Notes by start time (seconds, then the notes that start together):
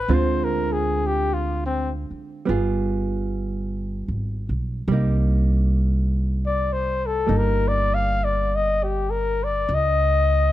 Already playing: B4
0.08 D2 D3 G#3 C4 F4
0.14 C5
0.44 A#4
0.72 G#4
1.06 G4
1.34 F4
1.66 C4
2.11 muted upright bass stroke
2.45 G1 G3 B3 F4
2.50 G#4
4.08 G#1
4.49 B1
4.88 C2 G3
4.92 A#3 D#4
6.46 D5
6.73 C5
7.06 A4
7.27 G1 G3 A#3 D#4
7.38 A#4
7.68 D5
7.94 F5
8.24 D5
8.55 D#5
8.83 G4
9.10 A#4
9.44 D5
9.69 C#2
9.74 D#5